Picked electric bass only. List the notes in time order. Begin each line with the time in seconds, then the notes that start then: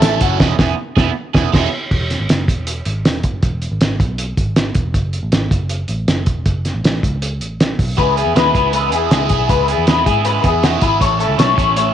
0.02 A1
0.21 F#1
0.40 E1
0.59 E1
0.97 E1
1.35 E1
1.54 E1
1.91 E1
2.20 G#1
2.29 F#1
2.48 E1
2.86 G#1
3.05 E1
3.24 F#1
3.43 E1
3.72 G#1
3.81 G#1
4.00 B1
4.37 G#1
4.76 E1
4.94 F#1
5.23 A1
5.33 G#1
5.51 F#1
5.89 A1
6.08 F#1
6.27 E1
6.46 F#1
6.74 A1
6.84 A1
7.03 C#2
7.41 A1
7.79 B1
7.98 C#2
8.26 E2
8.35 D#2
8.55 C#2
8.93 E2
9.11 C#2
9.30 B1
9.49 C#2
9.78 E2
9.87 E2
10.06 G#2
10.44 E2
10.82 G#1
11.01 A1
11.29 C#2
11.38 B1
11.58 A1